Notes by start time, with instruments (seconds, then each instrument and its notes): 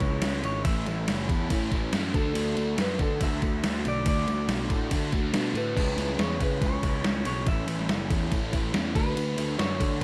Already playing: clean electric guitar C#5
0.00 picked electric bass C#2, overdriven electric guitar C#3 G#3 C#4 E4, kick, ride
0.22 picked electric bass C#2, overdriven electric guitar C#3 G#3 C#4 E4, snare, ride
0.43 picked electric bass G#1, overdriven electric guitar C#3 G#3 C#4 E4, clean electric guitar C#5, ride
0.64 picked electric bass A1, overdriven electric guitar A2 E3 A3 C#4 E4, clean electric guitar E5, kick, ride
0.86 picked electric bass A1, overdriven electric guitar A2 E3 A3 C#4 E4, snare, ride
1.07 picked electric bass F#1, overdriven electric guitar A2 E3 A3 C#4 E4, snare, ride
1.29 picked electric bass E2, overdriven electric guitar A2 E3 A3 C#4 E4, kick, ride
1.50 overdriven electric guitar A2 E3 A3 C#4 E4, picked electric bass A2, kick, ride
1.71 picked electric bass A1, overdriven electric guitar A2 E3 A3 C#4 E4, kick, ride
1.92 picked electric bass F#2, overdriven electric guitar A2 E3 A3 C#4 E4, snare, ride
2.13 picked electric bass D2, overdriven electric guitar D3 A3 D4 F#4, clean electric guitar A4, kick, ride
2.34 picked electric bass D2, overdriven electric guitar D3 A3 D4 F#4, ride
2.56 picked electric bass D2, overdriven electric guitar D3 A3 D4 F#4, ride
2.77 picked electric bass F#2, overdriven electric guitar D3 A3 D4 F#4, clean electric guitar B4, snare, ride
2.99 overdriven electric guitar D3 A3 D4 F#4, picked electric bass D3, clean electric guitar A4, kick, ride
3.20 picked electric bass D2, overdriven electric guitar D3 A3 D4 F#4, clean electric guitar E5, kick, ride
3.41 picked electric bass D2, overdriven electric guitar D3 A3 D4 F#4, kick, ride
3.63 picked electric bass D2, overdriven electric guitar D3 A3 D4 F#4, snare, ride
3.84 picked electric bass B1, overdriven electric guitar D3 A3 D4 F#4, clean electric guitar D5, ride
4.05 picked electric bass D2, overdriven electric guitar D3 A3 D4 F#4, clean electric guitar D5, kick, ride
4.27 picked electric bass D2, overdriven electric guitar D3 A3 D4 F#4, snare, ride
4.48 picked electric bass B1, overdriven electric guitar D3 A3 D4 F#4, snare, ride
4.69 picked electric bass A2, overdriven electric guitar D3 A3 D4 F#4, kick, ride
4.91 overdriven electric guitar D3 A3 D4 F#4, picked electric bass D3, kick, ride
5.12 picked electric bass D2, overdriven electric guitar D3 A3 D4 F#4, kick, ride
5.33 picked electric bass B2, overdriven electric guitar D3 A3 D4 F#4, snare, ride
5.54 picked electric bass A2, overdriven electric guitar D3 A3 D4 F#4, clean electric guitar B4, ride
5.75 picked electric bass C#2, overdriven electric guitar C#3 G#3 C#4 E4, kick, crash
5.96 picked electric bass C#2, overdriven electric guitar C#3 G#3 C#4 E4, ride
6.09 snare
6.18 picked electric bass E2, overdriven electric guitar C#3 G#3 C#4 E4, clean electric guitar C#5, snare, ride
6.40 overdriven electric guitar C#3 G#3 C#4 E4, picked electric bass C#3, clean electric guitar B4, kick, ride
6.61 picked electric bass C#2, overdriven electric guitar C#3 G#3 C#4 E4, clean electric guitar C#5, kick, ride
6.82 picked electric bass C#2, overdriven electric guitar C#3 G#3 C#4 E4, kick, ride
7.04 picked electric bass C#2, overdriven electric guitar C#3 G#3 C#4 E4, snare, ride
7.25 picked electric bass B1, overdriven electric guitar C#3 G#3 C#4 E4, clean electric guitar C#5, ride
7.46 picked electric bass A1, overdriven electric guitar A2 E3 A3 C#4 E4, clean electric guitar E5, kick, ride
7.67 picked electric bass A1, overdriven electric guitar A2 E3 A3 C#4 E4, ride
7.79 snare
7.88 picked electric bass F#1, overdriven electric guitar A2 E3 A3 C#4 E4, snare, ride
8.09 picked electric bass E2, overdriven electric guitar A2 E3 A3 C#4 E4, kick, ride
8.31 overdriven electric guitar A2 E3 A3 C#4 E4, picked electric bass A2, kick, ride
8.52 picked electric bass A1, overdriven electric guitar A2 E3 A3 C#4 E4, kick, ride
8.73 picked electric bass E2, overdriven electric guitar A2 E3 A3 C#4 E4, snare, ride
8.95 picked electric bass D2, overdriven electric guitar D3 A3 D4 F#4, clean electric guitar B4, kick, ride
9.15 picked electric bass D2, overdriven electric guitar D3 A3 D4 F#4, ride
9.37 picked electric bass D2, overdriven electric guitar D3 A3 D4 F#4, ride
9.58 picked electric bass F#2, overdriven electric guitar D3 A3 D4 F#4, clean electric guitar C#5, snare, ride
9.79 overdriven electric guitar D3 A3 D4 F#4, picked electric bass D3, kick, ride
10.01 overdriven electric guitar D3